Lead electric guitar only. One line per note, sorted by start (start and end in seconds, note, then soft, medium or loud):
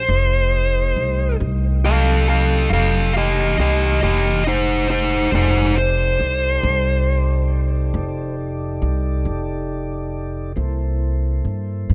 0.00 1.36 C5 medium
1.85 2.27 A4 medium
1.85 2.26 F5 medium
2.29 2.68 A4 medium
2.29 2.70 F5 medium
2.73 3.12 A4 medium
2.73 3.14 F5 medium
3.17 3.56 G4 medium
3.17 3.58 D#5 medium
3.60 4.00 G4 medium
3.60 4.02 D#5 medium
4.03 4.43 G4 medium
4.03 4.45 D#5 medium
4.47 4.87 D#4 medium
4.47 4.89 C5 medium
4.90 5.30 D#4 medium
4.90 5.32 C5 medium
5.35 5.74 D#4 medium
5.35 5.76 C5 medium
5.78 8.35 C5 medium